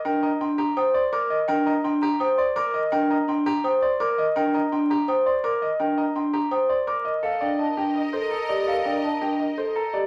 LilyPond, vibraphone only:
\new Staff \with { instrumentName = "Vibraphone" } { \time 4/4 \key ees \major \tempo 4 = 167 d'8 r8 d'8 r8 c''8 r8 bes'8 r8 | d'8 r8 d'8 r8 c''8 r8 bes'8 r8 | d'8 r8 d'8 r8 c''8 r8 bes'8 r8 | d'8 r8 d'8 r8 c''8 r8 bes'8 r8 |
d'8 r8 d'8 r8 c''8 r8 bes'8 r8 | \key c \dorian r8 d'8 r8 d'8 r8 a'8 r8 g'8 | r8 d'8 r8 d'8 r8 a'8 r8 g'8 | }